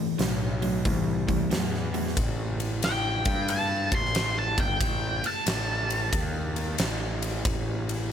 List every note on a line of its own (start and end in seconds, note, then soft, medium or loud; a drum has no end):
0.00 0.17 A2 medium
0.00 0.17 E3 medium
0.19 0.83 B1 medium
0.19 0.58 A2 medium
0.19 0.58 F#3 medium
0.19 snare medium
0.19 open hi-hat medium
0.62 0.83 A2 medium
0.62 0.83 F#3 medium
0.62 open hi-hat medium
0.85 1.49 C2 medium
0.85 1.24 A2 medium
0.85 1.24 E3 medium
0.85 kick medium
0.85 open hi-hat medium
1.28 1.49 A2 medium
1.28 1.49 E3 medium
1.28 kick medium
1.28 open hi-hat soft
1.51 2.15 E2 medium
1.51 1.90 A2 medium
1.51 1.90 F#3 medium
1.51 snare loud
1.51 open hi-hat medium
1.74 snare soft
1.94 2.15 A2 medium
1.94 2.15 F#3 medium
1.94 open hi-hat soft
2.07 snare soft
2.17 3.22 A1 medium
2.17 kick loud
2.17 ride medium
2.60 ride medium
2.82 3.48 G5 medium
2.82 snare loud
2.82 ride medium
3.25 3.88 G2 medium
3.25 kick loud
3.25 ride medium
3.48 3.92 A5 medium
3.48 ride medium
3.92 4.54 A1 medium
3.92 4.37 C6 medium
3.92 kick loud
3.92 ride medium
4.05 snare soft
4.15 snare loud
4.15 ride medium
4.39 4.59 A5 medium
4.58 4.79 G1 medium
4.58 5.24 G5 medium
4.58 kick loud
4.58 ride medium
4.81 5.21 A1 medium
4.81 kick medium
4.81 ride medium
5.24 7.20 A5 medium
5.24 ride medium
5.46 6.09 A1 medium
5.46 snare loud
5.46 ride medium
5.90 ride medium
6.13 6.75 D#2 medium
6.13 kick medium
6.13 ride loud
6.56 ride medium
6.78 7.41 A1 medium
6.78 snare loud
6.78 ride medium
7.22 ride medium
7.45 8.12 A1 medium
7.45 kick loud
7.45 ride medium
7.89 ride medium